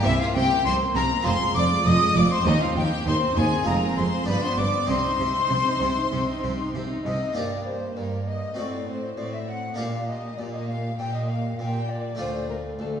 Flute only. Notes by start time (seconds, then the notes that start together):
0.04 E5
0.18 F5
0.33 G5
0.64 C6
0.96 A#5
1.25 C6
1.55 D6
1.85 D#6
2.16 D6
2.32 C6
2.48 D#5
2.62 F5
2.77 G5
3.08 C6
3.38 G#5
3.67 A#5
3.97 C6
4.29 B5
4.42 C6
4.58 D6
4.89 C6
7.03 D#5
7.35 D5
7.66 C5
7.97 A#4
8.27 D#5
8.58 D5
8.88 C5
9.18 D5
9.33 E5
9.48 F#5
9.78 F5
10.08 D#5
10.37 D5
10.53 D#5
10.67 F5
10.98 G5
11.13 D#5
11.29 F5
11.59 G5
11.89 D5
12.20 C5
12.50 A#4
12.79 A4